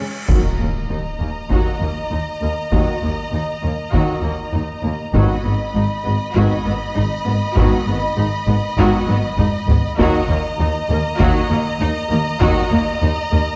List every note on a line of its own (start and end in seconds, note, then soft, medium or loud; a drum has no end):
0.00 0.08 C#3 soft
0.00 0.08 C#4 soft
0.00 cymbal swell soft
0.28 0.37 D#2 medium
0.28 0.38 D#2 medium
0.28 0.50 D#3 medium
0.28 0.50 F#3 medium
0.28 0.50 A#3 medium
0.28 0.50 D#4 medium
0.28 0.58 F#4 medium
0.28 5.10 D#5 medium
0.28 5.10 A#5 medium
0.28 taiko medium
0.28 impact medium
0.60 0.68 D#2 soft
0.60 0.68 A#3 soft
0.90 0.98 D#2 soft
0.90 0.99 D#2 soft
0.90 0.99 D#4 medium
1.20 1.28 D#2 soft
1.20 1.30 D#2 soft
1.20 1.28 A#3 soft
1.50 1.58 D#2 medium
1.50 1.59 D#2 medium
1.50 1.73 D#3 medium
1.50 1.73 F#3 medium
1.50 1.73 A#3 medium
1.50 1.72 D#4 medium
1.50 1.79 F#4 medium
1.50 taiko medium
1.80 1.88 D#2 soft
1.80 1.90 D#2 soft
1.80 1.89 A#3 soft
2.11 2.19 D#2 soft
2.11 2.20 D#2 soft
2.11 2.19 D#4 medium
2.42 2.50 D#2 soft
2.42 2.50 D#2 medium
2.42 2.50 A#3 medium
2.72 2.80 D#2 medium
2.72 2.93 D#3 medium
2.72 2.93 F#3 medium
2.72 2.94 A#3 medium
2.72 2.93 D#4 medium
2.72 3.00 F#4 medium
2.72 taiko medium
3.02 3.10 D#2 medium
3.02 3.11 D#2 medium
3.02 3.11 A#3 soft
3.32 3.40 D#2 medium
3.32 3.41 D#2 medium
3.32 3.41 D#4 soft
3.63 3.71 D#2 medium
3.63 3.71 A#3 medium
3.92 4.01 D#2 medium
3.92 4.15 D#3 medium
3.92 4.15 F#3 medium
3.92 4.15 A#3 medium
3.92 4.15 D#4 medium
3.92 4.21 F#4 medium
3.92 taiko medium
4.23 4.31 D#2 medium
4.23 4.31 A#3 medium
4.53 4.62 D#2 medium
4.53 4.61 D#4 medium
4.84 4.92 D#2 medium
4.84 4.92 A#3 medium
5.13 5.22 G#1 medium
5.13 5.22 G#2 medium
5.13 5.36 D#3 medium
5.13 5.36 F#3 medium
5.13 5.37 B3 medium
5.13 5.37 D#4 medium
5.13 5.43 F#4 medium
5.13 9.95 D#5 medium
5.13 9.98 B5 medium
5.13 taiko medium
5.45 5.53 G#1 medium
5.45 5.53 G#2 medium
5.45 5.53 B3 medium
5.74 5.83 G#1 medium
5.74 5.82 G#2 medium
5.74 5.83 D#4 medium
6.04 6.13 G#1 medium
6.04 6.14 G#2 medium
6.04 6.12 B3 medium
6.34 6.43 G#1 medium
6.34 6.44 G#2 medium
6.34 6.57 D#3 medium
6.34 6.57 F#3 medium
6.34 6.57 B3 medium
6.34 6.57 D#4 medium
6.34 6.63 F#4 medium
6.34 taiko medium
6.65 6.74 G#1 medium
6.65 6.74 G#2 medium
6.65 6.73 B3 medium
6.96 7.04 G#1 medium
6.96 7.04 G#2 medium
6.96 7.04 D#4 medium
7.26 7.35 G#1 medium
7.26 7.34 G#2 medium
7.26 7.34 B3 medium
7.56 7.66 G#1 medium
7.56 7.64 G#2 medium
7.56 7.78 D#3 medium
7.56 7.77 F#3 medium
7.56 7.78 B3 medium
7.56 7.77 D#4 medium
7.56 7.85 F#4 medium
7.56 taiko loud
7.87 7.96 G#1 medium
7.87 7.95 G#2 medium
7.87 7.95 B3 medium
8.17 8.26 G#1 medium
8.17 8.25 G#2 medium
8.17 8.26 D#4 medium
8.47 8.56 G#1 medium
8.47 8.55 G#2 medium
8.47 8.56 B3 medium
8.78 8.86 G#1 loud
8.78 8.86 G#2 loud
8.78 8.99 D#3 medium
8.78 8.99 F#3 medium
8.78 8.99 B3 medium
8.78 8.99 D#4 medium
8.78 9.06 F#4 loud
8.78 taiko medium
9.08 9.17 G#1 medium
9.08 9.16 G#2 medium
9.08 9.16 B3 medium
9.08 taiko high medium
9.38 9.46 G#1 medium
9.38 9.46 G#2 medium
9.38 9.46 D#4 medium
9.38 taiko low-mid loud
9.68 9.77 G#1 medium
9.68 9.76 G#2 medium
9.68 9.77 B3 medium
9.68 taiko low loud
9.98 10.07 D#2 loud
9.98 10.07 D#2 medium
9.98 10.21 D#3 medium
9.98 10.21 F#3 medium
9.98 10.20 A#3 medium
9.98 10.20 D#4 medium
9.98 10.27 F#4 loud
9.98 13.56 D#5 medium
9.98 13.56 A#5 medium
9.98 taiko medium
10.29 10.37 D#2 medium
10.29 10.38 A#3 medium
10.59 10.67 D#2 medium
10.59 10.68 D#2 medium
10.59 10.68 D#4 medium
10.89 10.97 D#2 medium
10.89 10.98 D#2 medium
10.89 10.98 A#3 medium
11.19 11.28 D#2 loud
11.19 11.28 D#2 medium
11.19 11.42 D#3 medium
11.19 11.42 F#3 medium
11.19 11.41 A#3 medium
11.19 11.41 D#4 medium
11.19 11.48 F#4 loud
11.19 taiko medium
11.50 11.58 D#2 medium
11.50 11.59 A#3 medium
11.80 11.88 D#2 medium
11.80 11.89 D#2 medium
11.80 11.89 D#4 medium
12.10 12.19 D#2 medium
12.10 12.18 A#3 medium
12.40 12.49 D#2 loud
12.40 12.49 D#2 medium
12.40 12.62 D#3 medium
12.40 12.62 F#3 medium
12.40 12.63 A#3 medium
12.40 12.63 D#4 medium
12.40 12.69 F#4 loud
12.40 taiko loud
12.71 12.79 D#2 medium
12.71 12.80 D#2 medium
12.71 12.79 A#3 medium
13.02 13.10 D#2 medium
13.02 13.10 D#4 medium
13.32 13.40 D#2 medium
13.32 13.40 A#3 medium